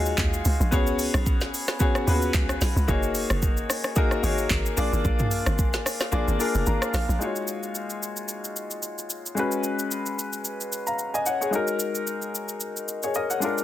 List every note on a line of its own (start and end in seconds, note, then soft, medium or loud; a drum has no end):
0.00 0.15 D#2 medium
0.00 0.74 G#3 medium
0.00 0.74 D#4 medium
0.00 0.74 F4 medium
0.00 0.72 F#4 medium
0.00 0.58 G#4 medium
0.00 0.73 C#5 loud
0.06 shaker medium
0.18 0.41 D#2 loud
0.18 kick medium
0.18 clap medium
0.18 shaker medium
0.34 shaker medium
0.45 0.58 C#2 medium
0.45 open hi-hat medium
0.45 shaker medium
0.60 0.74 A#1 loud
0.60 shaker medium
0.71 1.09 C#2 loud
0.71 1.59 B3 medium
0.71 1.59 C#4 medium
0.71 1.59 F#4 medium
0.71 1.60 G#4 medium
0.71 1.60 C#5 loud
0.71 kick loud
0.71 shaker medium
0.87 shaker medium
0.99 open hi-hat medium
0.99 shaker loud
1.14 1.48 B1 loud
1.14 cross-stick loud
1.14 shaker medium
1.26 kick loud
1.26 shaker medium
1.41 snare medium
1.41 shaker soft
1.54 open hi-hat medium
1.54 shaker loud
1.68 cross-stick medium
1.68 snare medium
1.68 shaker medium
1.79 2.02 B3 medium
1.79 2.02 C#4 medium
1.79 2.03 F#4 medium
1.79 2.03 G#4 medium
1.79 2.03 C#5 loud
1.79 kick loud
1.79 shaker medium
1.95 cross-stick loud
1.95 shaker medium
2.06 2.31 D#2 medium
2.06 2.73 B3 medium
2.06 2.73 C#4 medium
2.06 2.15 F4 medium
2.06 2.74 G#4 medium
2.06 2.74 B4 medium
2.06 open hi-hat medium
2.06 shaker medium
2.14 2.77 F#4 medium
2.22 shaker medium
2.34 2.58 C#2 medium
2.34 kick medium
2.34 clap medium
2.34 shaker medium
2.49 cross-stick loud
2.49 shaker medium
2.61 2.74 B1 medium
2.61 snare medium
2.61 open hi-hat medium
2.61 shaker medium
2.76 2.87 C#2 medium
2.76 shaker medium
2.87 3.25 F#1 loud
2.87 3.75 A#3 medium
2.87 3.75 D#4 medium
2.87 3.76 F#4 medium
2.87 3.76 G#4 medium
2.87 3.76 C#5 loud
2.87 kick loud
2.87 shaker medium
3.03 shaker medium
3.15 open hi-hat medium
3.15 shaker loud
3.30 3.64 F#1 medium
3.30 cross-stick loud
3.30 shaker medium
3.42 kick medium
3.42 shaker medium
3.57 shaker soft
3.70 cross-stick loud
3.70 open hi-hat medium
3.70 shaker loud
3.84 cross-stick medium
3.84 shaker medium
3.96 4.18 A#3 medium
3.96 4.19 D#4 medium
3.96 4.19 F#4 medium
3.96 4.19 G#4 medium
3.96 4.19 A#4 loud
3.96 kick loud
3.96 shaker medium
4.11 cross-stick medium
4.11 shaker medium
4.23 4.47 G#1 medium
4.23 4.75 A#3 medium
4.23 4.77 D#4 medium
4.23 4.78 F#4 medium
4.23 4.77 G#4 medium
4.23 4.78 C#5 medium
4.23 open hi-hat medium
4.23 shaker medium
4.38 shaker medium
4.50 4.74 G#1 medium
4.50 kick medium
4.50 clap medium
4.50 shaker medium
4.66 shaker medium
4.77 4.91 A#1 loud
4.77 5.64 A#3 loud
4.77 5.64 D4 medium
4.77 5.65 F4 medium
4.77 5.65 G#4 medium
4.77 5.65 D5 loud
4.77 open hi-hat medium
4.77 shaker medium
4.93 5.03 G#1 loud
4.93 shaker medium
5.05 5.41 A#1 loud
5.05 kick loud
5.05 shaker medium
5.19 mid tom loud
5.19 shaker medium
5.31 open hi-hat medium
5.31 shaker loud
5.46 5.80 G#1 loud
5.46 cross-stick loud
5.46 shaker medium
5.59 kick medium
5.59 shaker medium
5.73 snare medium
5.73 shaker soft
5.86 cross-stick loud
5.86 open hi-hat medium
5.86 shaker loud
6.00 cross-stick medium
6.00 snare medium
6.00 shaker medium
6.12 6.26 A#1 loud
6.12 6.34 A#3 medium
6.12 6.35 D4 medium
6.12 6.35 F4 medium
6.12 6.35 G#4 medium
6.12 6.36 D5 loud
6.12 shaker medium
6.28 6.38 G#1 medium
6.28 shaker medium
6.39 7.05 A#3 medium
6.39 7.06 D4 medium
6.39 7.06 F4 medium
6.39 7.06 G#4 medium
6.39 7.06 A#4 medium
6.39 open hi-hat medium
6.39 shaker medium
6.55 6.65 F1 loud
6.55 shaker medium
6.66 6.80 G#1 loud
6.66 6.92 A#5 medium
6.66 shaker medium
6.82 cross-stick loud
6.82 shaker medium
6.94 7.07 A#1 medium
6.94 7.19 F5 medium
6.94 cross-stick loud
6.94 snare medium
6.94 open hi-hat medium
6.94 shaker medium
7.09 7.19 A#1 medium
7.09 shaker medium
7.19 9.32 G#3 medium
7.19 9.33 D#4 medium
7.19 9.33 F4 medium
7.19 9.34 F#4 medium
7.19 shaker medium
7.23 9.34 C#5 medium
7.36 shaker medium
7.48 shaker medium
7.63 shaker medium
7.75 shaker medium
7.90 shaker soft
8.03 shaker medium
8.17 shaker medium
8.28 shaker medium
8.44 shaker soft
8.56 shaker medium
8.71 shaker soft
8.83 shaker medium
8.98 shaker soft
9.10 shaker medium
9.26 shaker medium
9.35 11.48 G#3 medium
9.35 11.49 C#4 medium
9.35 11.50 F#4 medium
9.35 shaker medium
9.39 10.71 B4 medium
9.52 shaker medium
9.64 shaker medium
9.79 shaker medium
9.91 shaker medium
10.06 shaker soft
10.19 shaker loud
10.33 shaker soft
10.45 shaker medium
10.61 shaker soft
10.73 shaker medium
10.87 11.13 F5 medium
10.87 11.13 A#5 medium
10.87 shaker soft
10.99 shaker medium
11.14 11.26 D#5 medium
11.14 11.26 G#5 medium
11.14 shaker soft
11.26 11.40 C#5 medium
11.26 11.40 F#5 medium
11.26 shaker medium
11.41 11.67 G#4 medium
11.41 11.67 C#5 medium
11.41 shaker medium
11.51 13.37 G#3 medium
11.51 13.38 D#4 medium
11.51 13.39 F#4 medium
11.51 shaker medium
11.55 12.60 A#4 medium
11.67 shaker medium
11.80 shaker medium
11.95 shaker medium
12.07 shaker medium
12.22 shaker soft
12.35 shaker loud
12.49 shaker medium
12.60 shaker medium
12.77 shaker soft
12.88 shaker medium
13.03 13.15 G#4 medium
13.03 13.15 C#5 medium
13.03 shaker soft
13.15 13.30 A#4 medium
13.15 13.30 D#5 medium
13.15 shaker medium
13.30 13.56 C#5 medium
13.30 13.56 F#5 medium
13.30 shaker medium
13.40 13.64 G#3 medium
13.40 13.64 D4 medium
13.40 13.64 F4 medium
13.40 shaker medium
13.45 13.64 A#4 medium
13.58 shaker medium